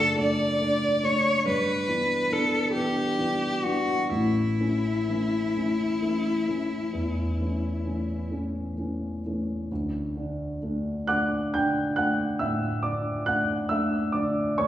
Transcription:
Already playing: grand piano F#1 F#2 A3 D4, cello A4
0.17 grand piano A3 D4, cello D5
0.61 grand piano A3 D4
1.03 grand piano A3 D4, cello C#5
1.46 grand piano G2, cello B4
1.88 grand piano E3 B3 D4
2.31 grand piano E3 B3 D4, cello A4
2.73 grand piano E3 B3 D4, cello G4
3.18 grand piano E3 B3 D4
3.64 grand piano E3 B3 D4, cello F#4
4.10 grand piano A1 A2, cello E4
4.60 grand piano E3 A3 C#4
5.09 grand piano E3 A3 C#4
5.55 grand piano E3 A3 C#4
6.02 grand piano E3 A3 C#4
6.48 grand piano E3 A3 C#4
6.93 grand piano E2
7.41 grand piano E3 A3 C#4
7.86 grand piano E3 A3 C#4
8.31 grand piano E3 A3 C#4
8.78 grand piano E3 A3 C#4
9.26 grand piano E3 A3 C#4
9.72 grand piano D2
10.17 grand piano D3 D4
10.63 grand piano A3 D4
11.07 grand piano A3 D4 F#5 D6 F#6
11.54 grand piano D3 D4 G5 G6
11.96 grand piano A3 D4 F#5 F#6
12.39 grand piano A2 E5 E6
12.83 grand piano D3 D4 D5 D6
13.26 grand piano A3 D4 F#5 F#6
13.69 grand piano A3 D4 E5 E6
14.12 grand piano D3 D4 D5 D6
14.58 grand piano A3 D4 C#5 C#6

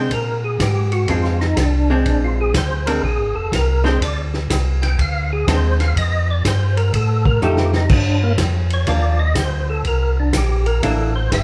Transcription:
Already playing: tonewheel organ C5
0.11 tonewheel organ A#2 A#4, kick, ride
0.44 tonewheel organ G#4
0.60 tonewheel organ G#2 G4, kick, snare, hi-hat pedal, ride
0.92 tonewheel organ F#4, ride
1.08 tonewheel organ F2 F4, hollow-body jazz guitar G#3 C4 D4, kick, ride
1.24 snare
1.40 tonewheel organ D#4, snare
1.57 tonewheel organ C2 D4, kick, snare, hi-hat pedal, ride
1.90 hollow-body jazz guitar G#3 C4 D4, tonewheel organ C4
2.05 tonewheel organ A#1 D4, kick, ride
2.24 tonewheel organ F4
2.41 tonewheel organ G#4
2.54 tonewheel organ D2 C5, kick, snare, hi-hat pedal, ride
2.86 hollow-body jazz guitar G#3 C4 D4, tonewheel organ A#4, ride
3.03 tonewheel organ A#1 G#4, kick
3.19 tonewheel organ G#1
3.34 tonewheel organ F1 A4
3.52 tonewheel organ C2 A#4, kick, snare, hi-hat pedal, ride
3.84 hollow-body jazz guitar G#3 C4 D4, tonewheel organ C5, snare
4.01 tonewheel organ D2 D5, kick, ride
4.34 snare
4.50 tonewheel organ C2, kick, snare, hi-hat pedal, ride
4.82 tonewheel organ G5, snare, ride
4.98 tonewheel organ D2 F5, kick, ride
5.33 tonewheel organ G#4
5.47 tonewheel organ D#2 C5, hollow-body jazz guitar G#3 C4 D4, kick, snare, hi-hat pedal, ride
5.80 tonewheel organ F5, snare, ride
5.96 tonewheel organ F2 D#5, kick, ride
6.30 tonewheel organ D5
6.45 tonewheel organ G2 C5, kick, snare, hi-hat pedal, ride
6.77 tonewheel organ A#4, ride
6.93 tonewheel organ A2 A4, kick, ride
7.25 tonewheel organ A#4, kick
7.42 tonewheel organ F2 A4, hollow-body jazz guitar F3 A3 D#4 G4, hi-hat pedal
7.57 tonewheel organ G4, snare
7.73 tonewheel organ D#4, snare
7.89 tonewheel organ G2 D4, kick, crash
8.23 tonewheel organ A#3
8.38 tonewheel organ F2, kick, snare, hi-hat pedal, ride
8.70 tonewheel organ C#5, ride
8.87 tonewheel organ D#2 D5, hollow-body jazz guitar F3 A#3 D4, kick, ride
9.19 tonewheel organ D#5
9.35 tonewheel organ D2 C5, kick, snare, hi-hat pedal, ride
9.70 tonewheel organ A4
9.85 tonewheel organ C2 A#4, kick, ride
10.20 tonewheel organ D4
10.33 tonewheel organ A#1 G4, kick, snare, hi-hat pedal, ride
10.66 tonewheel organ A#4, ride
10.83 tonewheel organ A1 A4, hollow-body jazz guitar E3 A#3 D4, kick, ride
11.15 tonewheel organ C5
11.32 tonewheel organ G1 E5, kick, snare, hi-hat pedal, ride

